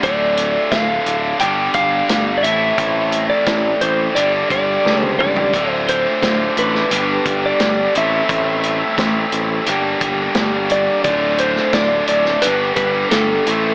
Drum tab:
HH |x-x-x-x-x-x-x-x-|x-x-x-x-x-x-----|x-x-x-x-x-x-x-x-|x-x-x-x-x-x-x-x-|
SD |----o-------o---|----o-------o---|----o--o----o---|----o-------o---|
T1 |----------------|-------------o--|----------------|----------------|
T2 |----------------|--------------o-|----------------|----------------|
FT |----------------|---------------o|----------------|----------------|
BD |o---o-----o-----|o---o-----o-----|o---o-----o-----|o---o-----o-----|

HH |x-x-x-x-x-x-x-x-|
SD |---oo--o----o---|
T1 |----------------|
T2 |----------------|
FT |----------------|
BD |o---o-----o-----|